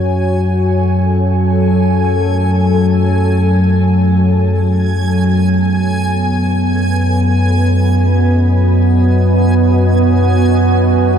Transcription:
0.00 11.18 F#2 medium
0.00 11.18 F#3 medium
0.00 4.94 F#4 medium
0.00 7.68 A4 medium
0.00 11.18 C#5 medium
0.00 7.64 G#5 medium
0.00 11.18 G#5 medium
4.94 11.18 B3 medium
6.24 11.18 D#5 medium
6.56 11.18 F#4 medium

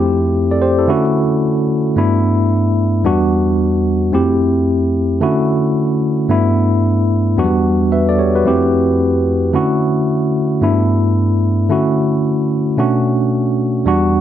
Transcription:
0.00 0.86 F2 medium
0.00 0.86 A3 medium
0.00 0.87 C4 medium
0.00 0.79 E4 medium
0.00 0.62 G4 medium
0.51 0.62 A4 medium
0.51 0.61 D5 medium
0.62 0.78 G4 medium
0.62 0.78 C5 medium
0.78 0.88 E4 soft
0.78 1.04 A4 medium
0.87 1.94 D3 medium
0.87 1.94 A3 medium
0.87 1.95 C#4 medium
0.87 1.95 E4 medium
0.87 1.95 F#4 medium
1.96 3.02 G2 medium
1.96 3.03 A3 medium
1.96 3.03 B3 medium
1.96 3.03 D4 medium
1.96 3.04 E4 medium
3.04 4.10 E2 medium
3.04 4.11 G3 medium
3.04 4.11 B3 medium
3.04 4.11 D4 medium
3.04 4.12 F#4 medium
4.12 5.19 F2 medium
4.12 5.19 A3 medium
4.12 5.19 C4 medium
4.12 5.20 E4 medium
4.12 5.20 G4 medium
5.21 6.27 D3 medium
5.21 6.27 A3 medium
5.21 6.28 C#4 medium
5.21 6.28 E4 medium
5.21 6.28 F#4 medium
6.28 7.35 G2 medium
6.28 7.35 A3 medium
6.28 7.36 B3 medium
6.28 7.36 D4 medium
6.28 7.36 E4 medium
7.37 8.43 E2 medium
7.37 7.45 F#3 medium
7.37 8.44 B3 medium
7.37 8.44 D4 medium
7.37 7.91 F#4 medium
7.44 8.47 G3 medium
7.92 8.08 B4 medium
7.92 8.08 E5 medium
8.09 8.19 A4 medium
8.09 8.18 D5 medium
8.19 8.35 G4 medium
8.19 8.35 C#5 medium
8.35 8.61 F#4 medium
8.35 8.61 B4 medium
8.45 9.51 F2 medium
8.45 9.52 A3 medium
8.45 9.52 C4 medium
8.45 9.52 E4 medium
8.45 9.53 G4 medium
9.53 10.59 D3 medium
9.53 10.60 A3 medium
9.53 10.60 C#4 medium
9.53 10.60 E4 medium
9.53 10.61 F#4 medium
10.61 11.68 G2 medium
10.61 11.68 A3 medium
10.61 11.68 B3 medium
10.61 11.68 D4 medium
10.61 11.69 E4 medium
11.69 12.76 D3 medium
11.69 12.76 A3 medium
11.69 12.76 C#4 medium
11.69 12.77 E4 medium
11.69 12.77 F#4 medium
12.77 13.84 B2 medium
12.77 13.84 A3 medium
12.77 13.84 C#4 medium
12.77 13.85 D4 medium
12.77 13.85 F#4 medium
13.85 14.21 E2 medium
13.85 14.21 G3 medium
13.85 14.21 B3 medium
13.85 14.21 D4 medium
13.85 14.21 F#4 medium

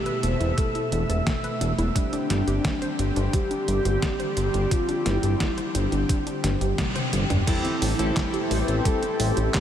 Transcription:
0.00 1.91 B2 medium
0.00 1.91 A3 medium
0.00 0.24 G4 loud
0.00 1.91 E5 medium
0.06 0.21 B4 loud
0.06 closed hi-hat soft
0.23 0.35 E1 medium
0.23 0.33 A3 medium
0.23 0.57 C5 loud
0.23 closed hi-hat medium
0.40 0.53 E1 medium
0.40 0.55 E4 medium
0.40 closed hi-hat soft
0.57 0.68 A3 medium
0.57 1.22 A4 loud
0.57 kick loud
0.57 closed hi-hat medium
0.75 0.85 E4 medium
0.75 closed hi-hat soft
0.92 1.04 E1 loud
0.92 1.02 A3 medium
0.92 closed hi-hat medium
1.09 1.22 E1 medium
1.09 1.19 A4 medium
1.09 closed hi-hat soft
1.26 1.41 A3 loud
1.26 kick loud
1.26 snare loud
1.26 closed hi-hat medium
1.44 1.59 B4 loud
1.44 closed hi-hat soft
1.61 1.73 E1 medium
1.61 1.71 A3 medium
1.61 closed hi-hat medium
1.78 1.91 E1 medium
1.78 1.93 E4 medium
1.78 closed hi-hat soft
1.95 7.43 D3 medium
1.95 7.43 G3 medium
1.95 2.05 G3 medium
1.95 7.43 C4 medium
1.95 3.34 D4 loud
1.95 7.43 G4 medium
1.95 kick loud
1.95 closed hi-hat medium
2.13 2.23 D4 medium
2.13 closed hi-hat soft
2.30 2.42 G1 medium
2.30 2.40 G3 medium
2.30 snare medium
2.30 closed hi-hat medium
2.47 2.59 G1 medium
2.47 2.57 G4 medium
2.47 closed hi-hat soft
2.64 2.79 G3 loud
2.64 kick loud
2.64 snare loud
2.64 closed hi-hat medium
2.82 2.97 C5 loud
2.82 closed hi-hat soft
2.99 3.11 G1 medium
2.99 3.09 G3 medium
2.99 closed hi-hat medium
3.16 3.29 G1 medium
3.16 3.31 D4 medium
3.16 closed hi-hat soft
3.33 3.43 G3 medium
3.33 4.72 G4 loud
3.33 kick loud
3.33 closed hi-hat medium
3.51 3.61 D4 medium
3.51 closed hi-hat soft
3.68 3.80 G1 medium
3.68 3.78 G3 medium
3.68 closed hi-hat medium
3.85 3.97 G1 medium
3.85 3.95 G4 medium
3.85 closed hi-hat medium
4.02 4.17 G3 loud
4.02 kick loud
4.02 snare loud
4.02 closed hi-hat medium
4.19 4.34 C5 loud
4.19 closed hi-hat soft
4.37 4.49 G1 medium
4.37 4.47 G3 medium
4.37 closed hi-hat medium
4.54 4.66 G1 medium
4.54 4.69 D4 medium
4.54 closed hi-hat medium
4.71 4.81 G3 medium
4.71 5.07 F4 loud
4.71 kick loud
4.71 closed hi-hat medium
4.89 4.98 D4 medium
4.89 closed hi-hat soft
5.06 5.18 G1 loud
5.06 5.16 G3 medium
5.06 5.76 E4 loud
5.06 snare medium
5.06 closed hi-hat medium
5.23 5.35 G1 medium
5.23 5.33 G4 medium
5.23 closed hi-hat medium
5.40 5.55 G3 loud
5.40 kick loud
5.40 snare loud
5.40 closed hi-hat medium
5.58 5.72 C5 loud
5.58 closed hi-hat soft
5.75 5.87 G1 medium
5.75 5.85 G3 medium
5.75 6.78 D4 loud
5.75 closed hi-hat medium
5.92 6.04 G1 medium
5.92 6.07 D4 medium
5.92 closed hi-hat medium
6.09 6.19 G3 medium
6.09 kick loud
6.09 closed hi-hat medium
6.27 6.37 D4 medium
6.27 closed hi-hat soft
6.44 6.56 G1 medium
6.44 6.54 G3 medium
6.44 snare medium
6.44 closed hi-hat medium
6.61 6.73 G1 medium
6.61 6.71 G4 medium
6.61 closed hi-hat medium
6.78 6.93 G3 loud
6.78 kick loud
6.78 snare loud
6.78 closed hi-hat medium
6.78 high tom medium
6.95 7.10 C5 loud
6.95 closed hi-hat soft
6.95 high tom medium
7.13 7.25 G1 medium
7.13 7.23 G3 medium
7.13 closed hi-hat medium
7.30 7.42 G1 medium
7.30 7.45 D4 medium
7.30 closed hi-hat medium
7.30 mid tom medium
7.47 9.60 E3 medium
7.47 7.57 G3 medium
7.47 9.60 A3 medium
7.47 7.95 C4 medium
7.47 9.60 C4 medium
7.47 7.95 E4 medium
7.47 8.53 E4 loud
7.47 7.95 G4 medium
7.47 9.60 G4 loud
7.47 7.95 A4 medium
7.47 kick loud
7.47 closed hi-hat medium
7.47 crash loud
7.64 7.74 C4 medium
7.64 closed hi-hat soft
7.82 7.94 A1 medium
7.82 7.92 G3 medium
7.82 open hi-hat medium
7.99 8.11 A1 medium
7.99 9.60 C4 medium
7.99 8.09 E4 medium
7.99 9.60 E4 medium
7.99 9.60 G4 medium
7.99 9.60 A4 medium
7.99 closed hi-hat medium
8.16 8.31 G3 loud
8.16 kick loud
8.16 snare loud
8.16 clap loud
8.16 closed hi-hat medium
8.33 8.48 G4 loud
8.33 closed hi-hat soft
8.51 8.63 A1 medium
8.51 8.61 G3 medium
8.51 8.87 B4 loud
8.51 open hi-hat medium
8.68 8.80 A1 medium
8.68 8.83 C4 medium
8.68 closed hi-hat medium
8.85 8.95 G3 medium
8.85 9.56 A4 loud
8.85 kick loud
8.85 closed hi-hat medium
9.02 9.12 C4 medium
9.02 closed hi-hat soft
9.20 9.32 A1 medium
9.20 9.29 G3 medium
9.20 open hi-hat medium
9.37 9.49 A1 medium
9.37 9.47 E4 medium
9.37 closed hi-hat medium
9.54 9.60 G3 loud
9.54 9.60 G4 loud
9.54 kick loud
9.54 snare loud
9.54 clap loud
9.54 closed hi-hat medium

